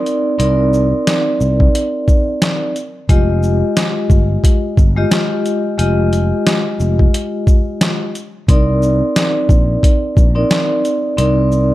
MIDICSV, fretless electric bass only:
0, 0, Header, 1, 2, 480
1, 0, Start_track
1, 0, Key_signature, -3, "minor"
1, 0, Tempo, 674157
1, 281, Time_signature, 4, 2, 24, 8
1, 8362, End_track
2, 0, Start_track
2, 0, Title_t, "Fretless electric bass"
2, 0, Program_c, 0, 35
2, 281, Note_on_c, 0, 36, 107
2, 653, Note_off_c, 0, 36, 0
2, 1002, Note_on_c, 0, 36, 91
2, 1188, Note_off_c, 0, 36, 0
2, 2201, Note_on_c, 0, 29, 110
2, 2573, Note_off_c, 0, 29, 0
2, 2918, Note_on_c, 0, 31, 101
2, 3105, Note_off_c, 0, 31, 0
2, 3400, Note_on_c, 0, 31, 94
2, 3586, Note_off_c, 0, 31, 0
2, 4122, Note_on_c, 0, 29, 98
2, 4493, Note_off_c, 0, 29, 0
2, 4843, Note_on_c, 0, 29, 92
2, 5028, Note_off_c, 0, 29, 0
2, 6041, Note_on_c, 0, 36, 107
2, 6413, Note_off_c, 0, 36, 0
2, 6758, Note_on_c, 0, 34, 96
2, 6945, Note_off_c, 0, 34, 0
2, 7240, Note_on_c, 0, 34, 93
2, 7426, Note_off_c, 0, 34, 0
2, 7962, Note_on_c, 0, 36, 110
2, 8333, Note_off_c, 0, 36, 0
2, 8362, End_track
0, 0, End_of_file